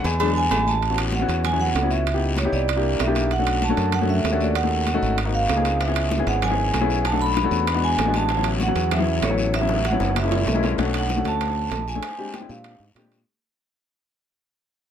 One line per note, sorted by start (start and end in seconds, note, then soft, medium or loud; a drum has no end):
0.04 0.48 E2 loud
0.04 0.48 G#5 medium
0.04 cowbell medium
0.04 high conga soft
0.04 low agogo medium
0.04 short guiro medium
0.20 0.41 F#3 medium
0.20 0.41 G#3 medium
0.20 0.42 D4 medium
0.20 cowbell loud
0.20 low agogo loud
0.20 long guiro medium
0.36 0.69 G#5 loud
0.36 high conga soft
0.51 1.23 A1 medium
0.51 cowbell medium
0.51 high conga medium
0.51 low timbale medium
0.51 low agogo loud
0.51 short guiro medium
0.67 0.96 A5 loud
0.67 high conga medium
0.67 short guiro medium
0.82 high conga soft
0.82 high timbale medium
0.82 long guiro medium
0.90 1.12 B3 medium
0.90 1.12 C#4 medium
0.90 1.12 E4 medium
0.90 1.12 F#4 medium
0.97 high conga soft
0.97 high timbale loud
1.12 1.46 F#5 medium
1.12 high conga loud
1.12 low timbale medium
1.12 short guiro medium
1.22 1.43 B3 medium
1.22 1.43 C#4 medium
1.22 1.43 E4 medium
1.22 1.43 F#4 medium
1.28 1.72 E2 medium
1.28 high timbale medium
1.28 short guiro medium
1.44 1.52 G#5 medium
1.44 high conga soft
1.44 low conga medium
1.44 high timbale medium
1.44 long guiro medium
1.53 1.74 B3 medium
1.53 1.74 C#4 medium
1.53 1.74 E4 medium
1.53 1.75 F#4 medium
1.59 1.89 F#5 medium
1.59 high conga soft
1.59 low conga medium
1.75 2.47 C#2 medium
1.75 high conga medium
1.75 high timbale medium
1.75 low timbale medium
1.75 short guiro medium
1.83 2.05 B3 medium
1.83 2.05 C#4 medium
1.83 2.05 E4 medium
1.83 2.05 F#4 medium
1.90 2.20 E5 medium
1.90 high conga soft
1.90 short guiro medium
2.06 high conga soft
2.06 high timbale medium
2.06 long guiro medium
2.14 2.36 B3 medium
2.14 2.36 D#4 medium
2.14 2.36 E4 medium
2.14 2.36 G4 medium
2.21 high conga soft
2.36 2.45 C#5 medium
2.36 high conga loud
2.36 high timbale medium
2.36 low timbale medium
2.36 short guiro medium
2.45 2.67 B3 medium
2.45 2.67 D#4 medium
2.45 2.67 E4 medium
2.45 2.67 G4 medium
2.53 2.96 C2 medium
2.53 3.02 D5 medium
2.53 high conga soft
2.53 short guiro medium
2.68 high conga soft
2.68 high timbale loud
2.68 long guiro medium
2.76 2.98 A#3 medium
2.76 2.98 D4 medium
2.76 2.99 E4 medium
2.76 2.99 G4 medium
2.84 high conga soft
2.99 3.72 B1 medium
2.99 3.32 E5 medium
2.99 high conga medium
2.99 high timbale medium
2.99 low timbale medium
2.99 short guiro medium
3.07 3.29 A#3 medium
3.07 3.29 D4 medium
3.07 3.29 E4 medium
3.07 3.29 G4 medium
3.15 high conga soft
3.15 high timbale medium
3.15 short guiro medium
3.31 3.64 F#5 medium
3.31 high conga soft
3.31 high timbale medium
3.31 long guiro medium
3.39 3.61 A3 medium
3.39 3.61 C#4 medium
3.39 3.61 D4 medium
3.39 3.61 F#4 medium
3.47 high conga soft
3.47 high timbale medium
3.62 3.95 A5 medium
3.62 high conga loud
3.62 low timbale medium
3.62 short guiro medium
3.70 3.92 A3 medium
3.70 3.92 C#4 medium
3.70 3.92 D4 medium
3.70 3.92 F#4 medium
3.77 4.21 F#2 loud
3.77 high timbale medium
3.77 short guiro medium
3.92 4.10 F#5 medium
3.92 high conga soft
3.92 low conga medium
3.92 high timbale loud
3.92 long guiro medium
4.01 4.23 A3 medium
4.01 4.23 C#4 medium
4.01 4.23 D4 medium
4.01 4.23 F#4 medium
4.09 4.42 E5 medium
4.09 high conga soft
4.09 low conga medium
4.24 4.97 D#2 medium
4.24 high conga medium
4.24 high timbale medium
4.24 low timbale medium
4.24 short guiro medium
4.32 4.54 A3 medium
4.32 4.54 C#4 medium
4.32 4.54 D4 medium
4.32 4.54 F#4 medium
4.40 4.48 D5 medium
4.40 high conga soft
4.40 short guiro medium
4.55 5.14 F#5 medium
4.55 high conga soft
4.55 high timbale medium
4.55 long guiro medium
4.63 4.85 A3 medium
4.63 4.85 C#4 medium
4.63 4.85 D#4 medium
4.63 4.85 F#4 medium
4.72 high conga soft
4.87 high conga medium
4.87 high timbale medium
4.87 low timbale medium
4.87 short guiro medium
4.94 5.16 A3 medium
4.94 5.16 C#4 medium
4.94 5.16 D#4 medium
4.94 5.16 F#4 loud
5.02 5.46 G#1 loud
5.02 high conga soft
5.02 short guiro medium
5.18 high conga soft
5.18 high timbale loud
5.18 long guiro medium
5.25 5.47 A#3 medium
5.25 5.48 C4 medium
5.25 5.48 D#4 medium
5.25 5.48 F#4 medium
5.34 5.78 F5 medium
5.34 high conga soft
5.49 6.21 C#2 medium
5.49 high conga medium
5.49 high timbale medium
5.49 low timbale medium
5.49 short guiro medium
5.56 5.78 A#3 medium
5.56 5.78 C4 medium
5.56 5.78 D#4 medium
5.56 5.79 G#4 medium
5.65 high conga soft
5.65 high timbale medium
5.65 short guiro medium
5.80 6.24 E5 medium
5.80 high bongo medium
5.80 high conga soft
5.80 high timbale medium
5.80 long guiro medium
5.88 6.10 B3 medium
5.88 6.10 C#4 medium
5.88 6.10 E4 medium
5.88 6.10 G#4 medium
5.96 high bongo soft
5.96 high conga soft
5.96 high timbale loud
6.11 high bongo medium
6.11 high conga loud
6.11 low timbale medium
6.11 short guiro medium
6.19 6.41 B3 medium
6.19 6.41 C#4 medium
6.19 6.41 E4 medium
6.19 6.41 G#4 medium
6.27 6.70 G#1 medium
6.27 6.35 F#5 medium
6.27 high bongo soft
6.27 high timbale medium
6.27 short guiro medium
6.42 7.07 G#5 medium
6.42 high bongo medium
6.42 high conga soft
6.42 low conga medium
6.42 high timbale medium
6.42 long guiro medium
6.50 6.72 B3 medium
6.50 6.72 C#4 medium
6.50 6.72 E4 medium
6.50 6.72 G#4 medium
6.59 high conga soft
6.74 7.46 B1 medium
6.74 high bongo soft
6.74 low bongo medium
6.74 high conga medium
6.74 high timbale medium
6.74 low timbale medium
6.74 short guiro medium
6.81 7.03 B3 medium
6.81 7.03 C#4 medium
6.81 7.03 E4 medium
6.81 7.03 G#4 medium
6.89 high bongo soft
6.89 high conga soft
6.89 short guiro medium
7.05 7.13 A5 medium
7.05 high bongo medium
7.05 high conga soft
7.05 high timbale medium
7.05 long guiro medium
7.13 7.34 A3 medium
7.13 7.34 C#4 medium
7.13 7.34 D4 medium
7.13 7.34 F#4 medium
7.21 7.85 B5 loud
7.21 high bongo soft
7.21 high conga soft
7.36 high bongo medium
7.36 high conga medium
7.36 high timbale medium
7.36 low timbale soft
7.36 short guiro medium
7.44 7.66 A3 medium
7.44 7.66 C#4 medium
7.44 7.66 D4 medium
7.44 7.66 F#4 medium
7.51 7.95 E2 medium
7.51 high bongo soft
7.51 high conga soft
7.51 short guiro medium
7.67 high bongo medium
7.67 high conga soft
7.67 high timbale medium
7.67 long guiro medium
7.74 7.96 G#3 medium
7.74 7.96 B3 medium
7.74 7.96 D4 medium
7.74 7.96 F#4 medium
7.83 8.12 G#5 loud
7.83 high conga soft
7.98 8.70 A1 medium
7.98 high bongo soft
7.98 low bongo medium
7.98 high conga medium
7.98 high timbale medium
7.98 low timbale medium
7.98 short guiro medium
8.05 8.27 G#3 medium
8.05 8.27 B3 medium
8.05 8.27 D4 medium
8.05 8.28 F#4 medium
8.14 8.44 A5 medium
8.14 high bongo soft
8.14 high conga soft
8.14 high timbale medium
8.14 short guiro medium
8.29 high bongo medium
8.29 high conga soft
8.29 high timbale medium
8.29 long guiro medium
8.37 8.59 F#3 medium
8.37 8.59 B3 medium
8.37 8.59 C#4 medium
8.37 8.59 E4 medium
8.44 high bongo soft
8.44 high conga soft
8.44 high timbale medium
8.60 8.94 F#5 loud
8.60 high bongo medium
8.60 high conga medium
8.60 low timbale medium
8.60 short guiro medium
8.68 8.90 F#3 medium
8.68 8.90 B3 medium
8.68 8.90 C#4 medium
8.68 8.90 F#4 medium
8.75 9.19 E2 loud
8.75 high bongo soft
8.75 high timbale medium
8.75 short guiro medium
8.91 9.24 E5 medium
8.91 high bongo medium
8.91 high conga soft
8.91 low conga medium
8.91 high timbale medium
8.91 long guiro medium
8.99 9.21 F#3 medium
8.99 9.21 B3 medium
8.99 9.21 C#4 medium
8.99 9.21 E4 medium
9.07 high conga soft
9.07 low conga medium
9.22 9.95 A1 medium
9.22 9.52 C#5 medium
9.22 high bongo soft
9.22 low bongo medium
9.22 high conga medium
9.22 high timbale medium
9.22 low timbale medium
9.22 short guiro medium
9.30 9.52 F#3 medium
9.30 9.52 B3 medium
9.30 9.52 C#4 medium
9.30 9.52 E4 medium
9.38 high bongo soft
9.38 high conga soft
9.38 short guiro medium
9.54 9.84 E5 loud
9.54 high bongo medium
9.54 high timbale medium
9.54 long guiro medium
9.61 9.83 F#3 medium
9.61 9.83 B3 medium
9.61 9.83 C#4 medium
9.61 9.83 E4 medium
9.69 high bongo loud
9.69 high conga soft
9.85 10.15 F#5 medium
9.85 high conga loud
9.85 high timbale medium
9.85 low timbale medium
9.85 short guiro medium
9.92 10.14 F#3 medium
9.92 10.14 B3 medium
9.92 10.14 C#4 medium
9.92 10.15 E4 medium
10.00 10.44 F#1 medium
10.00 high bongo loud
10.00 high conga soft
10.00 short guiro medium
10.15 10.61 E5 medium
10.15 low bongo loud
10.15 high conga soft
10.15 high timbale loud
10.15 long guiro medium
10.24 10.46 G#3 medium
10.24 10.46 A#3 medium
10.24 10.46 C#4 medium
10.24 10.46 E4 medium
10.31 low bongo loud
10.31 high conga soft
10.31 high timbale medium
10.47 10.74 B1 medium
10.47 low bongo medium
10.47 high conga medium
10.47 low timbale medium
10.47 short guiro medium
10.54 10.77 G#3 medium
10.54 10.77 A#3 medium
10.54 10.77 C#4 medium
10.54 10.77 E4 medium
10.63 low bongo medium
10.63 high conga soft
10.63 low timbale medium
10.63 short guiro medium
10.78 11.22 B1 medium
10.78 11.06 A3 medium
10.78 11.06 C#4 medium
10.78 11.06 D4 medium
10.78 11.06 F#4 medium
10.78 high bongo medium
10.78 high conga soft
10.78 high timbale medium
10.78 long guiro medium
10.94 11.25 F#5 medium
10.94 high bongo soft
10.94 high conga soft
10.94 high timbale medium
11.09 high bongo medium
11.09 high conga loud
11.09 low timbale medium
11.09 short guiro medium
11.17 11.23 A3 medium
11.17 11.22 C#4 medium
11.17 11.23 D4 medium
11.17 11.23 F#4 medium
11.24 11.68 D2 medium
11.24 11.69 A3 medium
11.24 11.69 C#4 medium
11.24 11.69 D4 medium
11.24 11.69 F#4 medium
11.24 11.85 A5 loud
11.24 high bongo soft
11.24 high timbale medium
11.24 short guiro medium
11.41 high bongo medium
11.41 high conga soft
11.41 high timbale medium
11.41 long guiro medium
11.56 high conga soft
11.71 11.99 A#1 medium
11.71 high bongo soft
11.71 low bongo medium
11.71 high conga medium
11.71 high timbale medium
11.71 low timbale medium
11.71 short guiro medium
11.87 12.31 G#5 medium
11.87 high bongo soft
11.87 high conga soft
11.87 short guiro medium
11.95 12.03 A3 medium
11.95 12.03 C#4 medium
11.95 12.03 D4 medium
11.95 12.03 G#4 medium
12.03 high bongo medium
12.03 high timbale medium
12.03 long guiro medium
12.18 12.35 G#3 medium
12.18 12.35 C4 medium
12.18 12.35 D4 medium
12.18 12.35 G4 medium
12.18 high bongo soft
12.18 high conga soft
12.34 12.49 G5 medium
12.34 high bongo medium
12.34 high conga medium
12.34 high timbale medium
12.34 low timbale medium
12.34 short guiro medium
12.41 12.47 G#3 medium
12.41 12.47 C4 medium
12.41 12.47 D4 medium
12.41 12.47 E4 medium
12.49 12.78 A#2 medium
12.49 12.83 G#3 medium
12.49 12.82 C4 medium
12.49 12.82 D4 medium
12.49 12.83 G4 medium
12.49 12.79 F5 medium
12.49 high bongo soft
12.49 high conga soft
12.49 short guiro medium
12.64 high bongo medium
12.64 high timbale medium
12.64 long guiro medium
12.80 12.95 G#2 medium
12.80 high conga soft
12.95 13.23 A#2 medium
12.95 13.18 G#3 medium
12.95 13.18 C4 medium
12.95 13.18 D4 medium
12.95 13.18 G4 loud
12.95 high bongo soft
12.95 low bongo medium
12.95 high conga medium
12.95 high timbale medium
12.95 low timbale medium
12.95 short guiro medium
13.11 high bongo soft
13.11 high timbale medium
13.11 short guiro medium